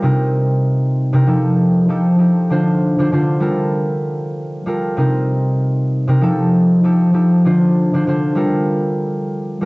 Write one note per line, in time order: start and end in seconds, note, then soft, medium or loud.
0.02 1.12 C3 medium
0.02 1.13 C4 medium
0.02 1.13 D#4 medium
0.02 1.14 A#4 medium
1.13 1.32 C3 loud
1.13 1.26 C4 medium
1.13 1.26 D#4 medium
1.13 1.27 A#4 loud
1.27 1.87 F3 medium
1.27 1.85 D#4 medium
1.27 1.85 G4 medium
1.27 1.85 A4 loud
1.89 2.17 F3 medium
1.89 2.18 D#4 medium
1.89 2.18 G4 medium
1.89 2.18 A4 medium
2.18 2.55 F3 medium
2.18 2.48 D#4 medium
2.18 2.48 G4 medium
2.18 2.49 A4 medium
2.50 2.97 D3 medium
2.50 2.95 D4 medium
2.50 2.95 F4 medium
2.50 2.96 C5 loud
2.99 3.11 D3 medium
2.99 3.11 D4 medium
2.99 3.12 F4 medium
2.99 3.13 C5 loud
3.12 3.48 D3 loud
3.12 3.43 D4 medium
3.12 3.39 F4 medium
3.12 3.44 C5 loud
3.40 4.65 G3 loud
3.40 4.66 F4 medium
3.40 4.67 A4 medium
3.40 4.67 A#4 medium
4.66 5.03 G3 medium
4.66 4.96 F4 medium
4.66 4.96 A4 medium
4.66 4.96 A#4 medium
4.97 6.06 C3 medium
4.97 6.08 C4 medium
4.97 6.08 D#4 medium
4.97 6.09 A#4 loud
6.07 6.27 C3 loud
6.07 6.21 C4 medium
6.07 6.21 D#4 medium
6.07 6.22 A#4 loud
6.21 6.82 F3 medium
6.21 6.79 D#4 medium
6.21 6.80 G4 medium
6.21 6.80 A4 loud
6.83 7.12 F3 medium
6.83 7.13 D#4 medium
6.83 7.13 G4 medium
6.83 7.13 A4 medium
7.13 7.50 F3 medium
7.13 7.43 D#4 medium
7.13 7.43 G4 medium
7.13 7.43 A4 medium
7.45 7.92 D3 medium
7.45 7.90 D4 medium
7.45 7.90 F4 medium
7.45 7.91 C5 loud
7.93 8.06 D3 medium
7.93 8.06 D4 medium
7.93 8.07 F4 medium
7.93 8.07 C5 loud
8.07 8.43 D3 loud
8.07 8.38 D4 medium
8.07 8.34 F4 medium
8.07 8.39 C5 loud
8.35 9.60 G3 loud
8.35 9.61 F4 medium
8.35 9.62 A4 medium
8.35 9.62 A#4 loud
9.61 9.65 G3 medium
9.61 9.65 F4 medium
9.61 9.65 A4 medium